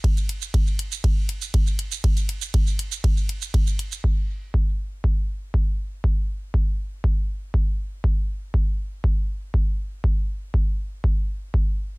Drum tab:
RD |x---x---x---x---|x---x---x---x---|----------------|----------------|
HH |-xx---x---x---x-|-xx---x---x---x-|----------------|----------------|
SH |-x-x-x-x---x-x-x|-x-x-x-x-x-x-x-x|----------------|----------------|
BD |o---o---o---o---|o---o---o---o---|o---o---o---o---|o---o---o---o---|

RD |----------------|----------------|
HH |----------------|----------------|
SH |----------------|----------------|
BD |o---o---o---o---|o---o---o---o---|